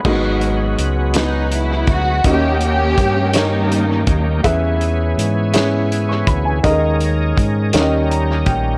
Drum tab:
CC |x-----|------|------|------|
HH |-xxxxx|xxxxxx|xxxxxx|xxxxxx|
SD |---o--|---o--|---o--|---o--|
BD |o----o|o-o--o|o----o|o-o--o|